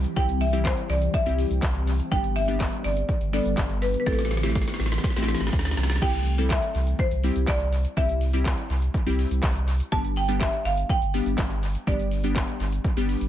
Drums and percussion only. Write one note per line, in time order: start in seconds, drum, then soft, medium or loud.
0.04 closed hi-hat medium
0.04 shaker medium
0.17 kick loud
0.17 closed hi-hat medium
0.17 shaker medium
0.29 closed hi-hat medium
0.29 shaker medium
0.41 open hi-hat medium
0.41 shaker soft
0.53 closed hi-hat medium
0.53 shaker medium
0.65 kick loud
0.65 snare medium
0.65 clap loud
0.65 closed hi-hat medium
0.65 tambourine medium
0.65 shaker medium
0.77 closed hi-hat medium
0.77 shaker medium
0.90 open hi-hat medium
0.90 shaker medium
1.02 closed hi-hat medium
1.02 shaker medium
1.14 kick loud
1.14 closed hi-hat medium
1.14 shaker medium
1.26 closed hi-hat medium
1.26 shaker medium
1.39 open hi-hat medium
1.39 shaker medium
1.51 closed hi-hat medium
1.51 shaker medium
1.62 kick loud
1.62 snare medium
1.62 clap loud
1.62 closed hi-hat medium
1.62 tambourine medium
1.62 shaker medium
1.75 closed hi-hat medium
1.75 shaker medium
1.88 open hi-hat medium
1.88 shaker medium
2.00 closed hi-hat medium
2.00 shaker medium
2.12 kick loud
2.12 closed hi-hat medium
2.12 shaker medium
2.24 closed hi-hat medium
2.24 shaker medium
2.36 open hi-hat medium
2.36 shaker soft
2.48 closed hi-hat medium
2.48 shaker medium
2.60 kick loud
2.60 snare loud
2.60 clap loud
2.60 closed hi-hat medium
2.60 tambourine medium
2.60 shaker medium
2.73 closed hi-hat medium
2.73 shaker medium
2.85 open hi-hat medium
2.85 shaker medium
2.97 closed hi-hat medium
2.97 shaker medium
3.09 kick loud
3.09 closed hi-hat medium
3.09 shaker medium
3.21 closed hi-hat medium
3.21 shaker medium
3.33 open hi-hat medium
3.33 shaker medium
3.46 closed hi-hat medium
3.46 shaker medium
3.57 kick loud
3.57 snare loud
3.57 clap loud
3.57 closed hi-hat medium
3.57 tambourine medium
3.57 shaker medium
3.70 closed hi-hat medium
3.70 shaker medium
3.82 open hi-hat medium
3.82 shaker medium
3.94 closed hi-hat medium
3.94 shaker medium
4.06 kick loud
4.06 snare medium
4.06 closed hi-hat medium
4.06 shaker medium
4.12 snare medium
4.19 snare medium
4.19 closed hi-hat medium
4.19 shaker medium
4.25 snare medium
4.31 snare medium
4.31 open hi-hat medium
4.31 shaker soft
4.37 snare medium
4.43 snare medium
4.43 closed hi-hat medium
4.43 shaker medium
4.49 snare medium
4.55 kick loud
4.55 snare medium
4.55 closed hi-hat medium
4.55 tambourine medium
4.55 shaker medium
4.62 snare medium
4.68 snare medium
4.68 closed hi-hat medium
4.68 shaker medium
4.74 snare medium
4.80 snare medium
4.80 open hi-hat medium
4.80 shaker medium
4.86 snare medium
4.92 snare medium
4.92 closed hi-hat medium
4.92 shaker medium
4.98 snare medium
5.04 kick loud
5.04 snare medium
5.04 closed hi-hat medium
5.04 shaker medium
5.10 snare medium
5.16 snare medium
5.16 closed hi-hat medium
5.16 shaker medium
5.22 snare medium
5.28 snare loud
5.28 open hi-hat medium
5.28 shaker medium
5.35 snare medium
5.41 snare loud
5.41 closed hi-hat medium
5.41 shaker medium
5.47 snare medium
5.53 kick loud
5.53 snare loud
5.53 closed hi-hat medium
5.53 tambourine medium
5.53 shaker medium
5.59 snare medium
5.65 snare loud
5.65 closed hi-hat medium
5.65 shaker medium
5.71 snare loud
5.77 snare loud
5.77 open hi-hat medium
5.77 shaker medium
5.83 snare loud
5.90 snare loud
5.90 closed hi-hat medium
5.90 shaker medium
5.96 snare loud
6.02 kick loud
6.02 closed hi-hat medium
6.02 crash loud
6.02 shaker medium
6.14 closed hi-hat medium
6.14 shaker medium
6.26 open hi-hat medium
6.26 shaker medium
6.38 closed hi-hat medium
6.38 shaker medium
6.50 kick loud
6.50 snare medium
6.50 clap loud
6.50 closed hi-hat medium
6.50 tambourine medium
6.50 shaker medium
6.62 closed hi-hat medium
6.62 shaker medium
6.75 open hi-hat medium
6.75 shaker medium
6.87 closed hi-hat medium
6.87 shaker medium
6.99 kick loud
6.99 closed hi-hat medium
6.99 shaker medium
7.11 closed hi-hat medium
7.11 shaker medium
7.24 open hi-hat medium
7.24 shaker medium
7.36 closed hi-hat medium
7.36 shaker medium
7.47 kick loud
7.47 snare medium
7.47 clap loud
7.47 closed hi-hat medium
7.47 tambourine medium
7.47 shaker medium
7.60 closed hi-hat medium
7.60 shaker medium
7.73 open hi-hat medium
7.73 shaker medium
7.85 closed hi-hat medium
7.85 shaker medium
7.97 kick loud
7.97 closed hi-hat medium
7.97 shaker medium
8.09 closed hi-hat medium
8.09 shaker medium
8.21 open hi-hat medium
8.21 shaker medium
8.33 closed hi-hat medium
8.33 shaker medium
8.45 kick loud
8.45 snare loud
8.45 clap loud
8.45 closed hi-hat medium
8.45 tambourine medium
8.45 shaker medium
8.58 closed hi-hat medium
8.58 shaker medium
8.70 open hi-hat medium
8.70 shaker soft
8.82 closed hi-hat medium
8.82 shaker medium
8.94 kick loud
8.94 closed hi-hat medium
8.94 shaker medium
9.07 closed hi-hat medium
9.07 shaker medium
9.19 open hi-hat medium
9.19 shaker medium
9.31 closed hi-hat medium
9.31 shaker medium
9.43 kick loud
9.43 snare medium
9.43 clap loud
9.43 closed hi-hat medium
9.43 tambourine medium
9.43 shaker medium
9.56 closed hi-hat medium
9.56 shaker medium
9.68 open hi-hat medium
9.68 shaker medium
9.80 closed hi-hat medium
9.80 shaker medium
9.92 kick loud
9.92 closed hi-hat medium
9.92 shaker medium
10.05 closed hi-hat medium
10.05 shaker medium
10.16 open hi-hat medium
10.16 shaker soft
10.29 closed hi-hat medium
10.29 shaker medium
10.40 kick loud
10.40 snare loud
10.40 clap loud
10.40 closed hi-hat medium
10.40 tambourine medium
10.40 shaker medium
10.53 closed hi-hat medium
10.53 shaker medium
10.65 open hi-hat medium
10.65 shaker medium
10.78 closed hi-hat medium
10.78 shaker medium
10.89 kick loud
10.89 closed hi-hat medium
10.89 shaker medium
11.02 closed hi-hat medium
11.02 shaker medium
11.14 open hi-hat medium
11.14 shaker medium
11.26 closed hi-hat medium
11.26 shaker medium
11.38 kick loud
11.38 snare loud
11.38 clap loud
11.38 closed hi-hat medium
11.38 tambourine medium
11.38 shaker medium
11.51 closed hi-hat medium
11.51 shaker medium
11.63 open hi-hat medium
11.63 shaker medium
11.75 closed hi-hat medium
11.75 shaker medium
11.87 kick loud
11.87 closed hi-hat medium
11.87 shaker medium
11.99 closed hi-hat medium
11.99 shaker medium
12.11 open hi-hat medium
12.11 shaker medium
12.24 closed hi-hat medium
12.24 shaker medium
12.36 kick loud
12.36 snare loud
12.36 clap loud
12.36 closed hi-hat medium
12.36 tambourine medium
12.36 shaker medium
12.48 closed hi-hat medium
12.48 shaker medium
12.60 open hi-hat medium
12.60 shaker medium
12.72 closed hi-hat medium
12.72 shaker medium
12.84 kick loud
12.84 closed hi-hat medium
12.84 shaker medium
12.97 closed hi-hat medium
12.97 shaker medium
13.09 open hi-hat medium
13.09 shaker medium
13.21 closed hi-hat medium
13.21 shaker medium